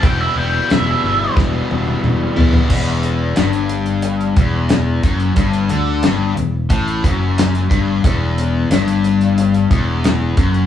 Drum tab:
CC |----------------|x---------------|----------------|----------------|
HH |x---x-----------|--x-xxxxxxx-x-xx|xxx-x-x-xxx-xxx-|x-x-xxxxxxx-x-xx|
SD |----o---o-------|----o-------o---|----o-------oo--|----o-------o---|
T1 |----------oo----|----------------|----------------|----------------|
T2 |------------o---|----------------|----------------|----------------|
FT |--------------oo|----------------|----------------|----------------|
BD |o-------o-------|o---------o---o-|o-------o-o---o-|o---------o---o-|